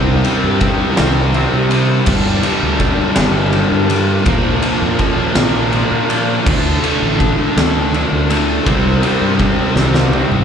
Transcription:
0.00 0.19 C2 loud
0.00 0.21 C3 medium
0.00 0.23 G3 loud
0.00 0.23 C4 loud
0.00 0.23 E4 loud
0.23 0.58 C3 medium
0.23 0.59 G3 medium
0.23 0.59 C4 medium
0.23 0.59 E4 medium
0.23 ride medium
0.44 0.74 G2 medium
0.59 0.95 C3 medium
0.59 0.96 G3 medium
0.59 0.96 C4 loud
0.59 0.96 E4 loud
0.59 kick medium
0.59 ride medium
0.96 1.45 C2 loud
0.96 1.32 C3 medium
0.96 1.33 G3 medium
0.96 1.33 C4 medium
0.96 1.34 E4 medium
0.96 snare loud
0.96 ride loud
1.33 1.68 C3 medium
1.33 1.69 G3 medium
1.33 1.69 C4 medium
1.33 1.70 E4 medium
1.33 ride medium
1.53 1.99 C3 medium
1.70 2.04 C3 medium
1.70 2.05 G3 medium
1.70 2.05 C4 medium
1.70 2.05 E4 medium
1.70 ride medium
2.06 2.38 G1 loud
2.06 2.42 G2 medium
2.06 2.42 D3 medium
2.06 2.42 G3 loud
2.06 2.43 A#3 medium
2.06 2.44 D4 loud
2.06 kick loud
2.06 crash loud
2.43 2.78 G2 medium
2.43 2.78 D3 medium
2.43 2.79 G3 medium
2.43 2.80 A#3 medium
2.43 2.81 D4 medium
2.43 ride medium
2.63 2.93 D2 medium
2.79 3.15 G2 medium
2.79 3.16 D3 medium
2.79 3.16 G3 loud
2.79 3.17 A#3 medium
2.79 3.17 D4 loud
2.79 kick medium
2.79 ride medium
3.16 3.64 G1 loud
3.16 3.50 G2 medium
3.16 3.50 D3 medium
3.16 3.51 G3 medium
3.16 3.52 A#3 medium
3.16 3.53 D4 medium
3.16 snare loud
3.16 ride loud
3.51 3.87 G2 medium
3.51 3.87 D3 loud
3.51 3.88 G3 medium
3.51 3.89 A#3 medium
3.51 3.89 D4 loud
3.51 ride medium
3.71 4.18 G2 medium
3.88 4.23 G2 medium
3.88 4.23 D3 medium
3.88 4.24 G3 medium
3.88 4.24 A#3 medium
3.88 4.26 D4 medium
3.88 ride medium
4.25 4.57 A#1 loud
4.25 4.60 A#2 medium
4.25 4.61 D3 loud
4.25 4.61 F3 loud
4.25 4.61 A#3 loud
4.25 4.63 D4 loud
4.25 kick loud
4.25 ride loud
4.61 4.97 A#2 medium
4.61 4.98 D3 medium
4.61 4.98 F3 loud
4.61 4.99 A#3 medium
4.61 5.00 D4 medium
4.61 ride medium
4.82 5.13 F2 medium
4.99 5.34 A#2 loud
4.99 5.34 D3 loud
4.99 5.35 F3 loud
4.99 5.36 A#3 medium
4.99 5.37 D4 loud
4.99 kick medium
4.99 ride medium
5.35 5.83 A#1 loud
5.35 5.71 A#2 medium
5.35 5.71 D3 medium
5.35 5.72 F3 medium
5.35 5.72 A#3 medium
5.35 5.73 D4 medium
5.35 snare loud
5.35 ride loud
5.72 6.08 A#2 medium
5.72 6.08 D3 medium
5.72 6.08 F3 medium
5.72 6.08 A#3 loud
5.72 6.09 D4 loud
5.72 ride medium
5.91 6.38 A#2 loud
6.09 6.44 A#2 medium
6.09 6.44 D3 medium
6.09 6.44 F3 medium
6.09 6.44 A#3 medium
6.09 6.44 D4 medium
6.09 ride medium
6.46 6.77 D2 loud
6.46 6.82 D3 medium
6.46 6.81 F#3 loud
6.46 6.83 A3 loud
6.46 6.83 D4 loud
6.46 kick loud
6.46 crash loud
6.83 7.17 D3 medium
6.83 7.19 F#3 medium
6.83 7.19 A3 medium
6.83 7.20 D4 medium
6.83 ride medium
7.02 7.33 A1 medium
7.19 7.55 D3 loud
7.19 7.55 F#3 medium
7.19 7.55 A3 loud
7.19 7.56 D4 loud
7.19 kick medium
7.19 ride medium
7.56 8.03 D2 loud
7.56 7.91 D3 medium
7.56 7.91 F#3 medium
7.56 7.92 A3 medium
7.56 7.92 D4 medium
7.56 snare loud
7.56 ride loud
7.92 8.27 D3 medium
7.92 8.28 F#3 medium
7.92 8.29 A3 medium
7.92 8.29 D4 loud
7.92 ride medium
8.12 8.58 D2 medium
8.28 8.63 D3 medium
8.28 8.64 F#3 medium
8.28 8.64 A3 medium
8.28 8.64 D4 medium
8.28 ride medium
8.66 8.98 C2 loud
8.66 9.00 C3 medium
8.66 9.01 G3 loud
8.66 9.01 C4 loud
8.66 9.01 E4 loud
8.66 kick loud
8.66 ride loud
9.01 9.37 C3 medium
9.01 9.38 G3 medium
9.01 9.39 C4 medium
9.01 9.39 E4 medium
9.01 ride medium
9.21 9.52 G2 medium
9.38 9.75 C3 medium
9.38 9.75 G3 medium
9.38 9.75 C4 loud
9.38 9.75 E4 medium
9.38 kick medium
9.38 ride medium
9.76 10.23 C2 medium
9.76 10.11 C3 medium
9.76 10.11 G3 medium
9.76 10.11 C4 medium
9.76 10.12 E4 medium
9.76 snare medium
9.94 snare medium
10.12 10.44 C3 medium
10.12 10.44 G3 medium
10.12 10.44 C4 medium
10.12 10.44 E4 loud
10.12 high tom medium
10.31 10.44 A1 medium
10.31 mid tom medium

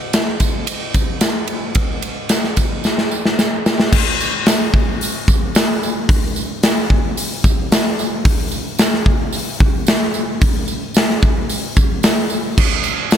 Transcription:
0.13 snare loud
0.13 ride medium
0.13 tambourine medium
0.40 kick medium
0.40 ride medium
0.40 tambourine medium
0.67 ride loud
0.67 tambourine medium
0.94 kick medium
0.94 ride medium
0.94 tambourine medium
1.21 snare loud
1.21 ride medium
1.21 tambourine loud
1.47 ride medium
1.75 kick loud
1.75 ride medium
2.02 ride medium
2.02 tambourine soft
2.29 snare loud
2.29 ride medium
2.29 tambourine loud
2.44 snare soft
2.56 kick medium
2.56 ride medium
2.56 tambourine medium
2.84 snare medium
2.84 tambourine medium
2.98 snare medium
3.11 tambourine medium
3.25 snare medium
3.39 snare medium
3.39 tambourine loud
3.66 snare loud
3.66 tambourine medium
3.80 snare medium
3.92 kick loud
3.92 crash loud
4.21 tambourine medium
4.46 snare loud
4.46 open hi-hat medium
4.46 tambourine loud
4.74 kick medium
5.01 open hi-hat medium
5.01 tambourine medium
5.28 kick loud
5.28 tambourine medium
5.55 snare loud
5.55 open hi-hat medium
5.55 tambourine loud
5.83 tambourine medium
6.09 kick loud
6.09 open hi-hat medium
6.36 tambourine medium
6.63 snare loud
6.63 open hi-hat medium
6.63 tambourine medium
6.90 kick medium
7.17 open hi-hat medium
7.17 tambourine medium
7.44 kick loud
7.44 tambourine medium
7.72 snare loud
7.72 open hi-hat medium
7.72 tambourine loud
7.99 tambourine medium
8.25 kick loud
8.25 open hi-hat medium
8.51 tambourine medium
8.79 snare loud
8.79 open hi-hat medium
8.79 tambourine medium
8.94 snare soft
9.06 kick medium
9.33 open hi-hat medium
9.33 tambourine medium
9.60 kick loud
9.87 snare loud
9.87 open hi-hat medium
9.87 tambourine loud
10.14 tambourine medium
10.41 kick loud
10.41 open hi-hat medium
10.41 tambourine soft
10.68 tambourine medium
10.94 snare loud
10.94 open hi-hat medium
10.94 tambourine loud
11.10 snare soft
11.23 kick loud
11.23 tambourine soft
11.49 open hi-hat medium
11.49 tambourine medium
11.76 kick medium
11.76 tambourine medium
12.03 snare loud
12.03 open hi-hat medium
12.03 tambourine loud
12.30 tambourine medium
12.58 kick loud
12.58 crash loud
12.84 tambourine medium
13.11 snare loud
13.11 open hi-hat medium
13.11 tambourine loud

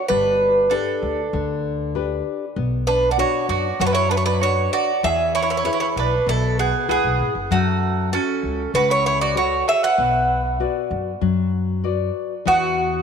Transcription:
0.08 0.74 G1 medium
0.08 0.69 G3 medium
0.08 0.67 D4 medium
0.08 0.73 B4 medium
0.70 2.21 D4 medium
0.70 1.20 D4 medium
0.70 1.20 G4 soft
0.70 2.21 A4 medium
0.70 1.21 B4 medium
1.02 1.24 D2 medium
1.33 2.19 D2 medium
1.33 1.93 D3 medium
1.95 2.44 D4 medium
1.95 2.44 G4 soft
1.95 2.45 B4 medium
2.56 3.21 B1 medium
2.56 3.16 B3 medium
2.87 3.10 D4 medium
2.87 3.09 B4 medium
3.11 3.18 F#4 medium
3.11 3.18 D5 medium
3.18 3.67 D4 medium
3.18 3.67 F#4 soft
3.18 3.47 F#4 medium
3.18 3.67 B4 soft
3.18 3.49 C#5 medium
3.49 3.70 F#2 medium
3.49 3.78 F#4 medium
3.49 3.78 D5 medium
3.80 4.66 F#2 loud
3.80 4.40 F#3 medium
3.80 3.85 F#4 medium
3.80 3.86 C#5 medium
3.85 3.92 D4 medium
3.85 3.93 B4 medium
3.93 4.09 E4 medium
3.93 4.10 C#5 medium
4.09 4.16 D4 medium
4.09 4.17 B4 medium
4.16 4.23 E4 soft
4.16 4.24 C#5 medium
4.25 4.41 D4 medium
4.25 4.42 B4 medium
4.41 4.91 D4 medium
4.41 4.90 F#4 soft
4.41 4.70 F#4 medium
4.41 4.91 B4 soft
4.41 4.71 C#5 medium
4.73 5.01 F#4 medium
4.73 5.01 D5 medium
5.03 5.68 E2 medium
5.03 5.63 E3 medium
5.03 5.33 G#4 medium
5.03 5.34 E5 medium
5.35 5.42 E4 medium
5.35 5.41 C#5 medium
5.42 5.49 E4 medium
5.42 5.49 C#5 medium
5.50 5.57 E4 medium
5.50 5.56 C#5 medium
5.57 5.64 E4 medium
5.57 5.64 C#5 medium
5.64 6.14 E4 soft
5.64 5.72 E4 medium
5.64 6.14 G#4 soft
5.64 6.14 B4 medium
5.64 5.72 C#5 medium
5.73 5.80 E4 medium
5.73 5.79 C#5 medium
5.80 5.87 E4 medium
5.80 5.87 C#5 medium
5.96 6.17 B1 medium
5.96 6.26 D4 medium
5.96 6.25 B4 medium
6.26 6.70 B1 medium
6.26 6.86 B2 medium
6.26 6.56 E4 medium
6.26 6.59 A4 medium
6.59 6.87 B3 medium
6.59 6.90 G#4 medium
6.88 7.02 C#2 medium
6.88 7.32 B3 medium
6.88 7.38 E4 soft
6.88 7.38 G#4 soft
6.88 7.33 G#4 medium
6.88 7.38 B4 medium
7.04 7.18 B1 medium
7.19 7.33 G#1 medium
7.35 7.49 F#1 medium
7.51 8.15 F#2 medium
7.51 8.10 F#3 medium
7.51 8.09 A3 medium
7.51 8.09 F#4 medium
8.12 8.71 C#4 medium
8.12 8.62 F#4 soft
8.12 8.62 A4 soft
8.12 8.70 A4 medium
8.12 8.62 C#5 medium
8.43 8.65 C#2 medium
8.74 9.61 C#2 medium
8.74 9.34 C#3 medium
8.74 8.89 F#4 medium
8.74 8.89 B4 medium
8.90 9.04 E4 medium
8.90 9.05 C#5 medium
9.06 9.20 E4 medium
9.06 9.20 C#5 medium
9.21 9.35 F#4 medium
9.21 9.35 D5 medium
9.35 9.85 F#4 soft
9.35 9.65 F#4 medium
9.35 9.85 A4 soft
9.35 9.86 C#5 medium
9.35 9.65 C#5 medium
9.68 9.82 G#4 medium
9.68 9.82 E5 loud
9.83 10.41 B4 medium
9.83 10.41 F#5 medium
9.98 10.63 B1 medium
9.98 10.58 B3 medium
10.60 11.10 F#4 medium
10.60 11.10 B4 soft
10.60 11.10 D5 soft
10.91 11.12 F#2 medium
11.21 12.09 F#2 medium
11.21 11.82 F#3 medium
11.84 12.33 F#4 soft
11.84 12.33 B4 soft
11.84 12.34 D5 medium
12.45 13.02 E2 medium
12.45 13.02 E3 medium
12.45 13.02 B3 medium
12.45 13.02 F#4 medium

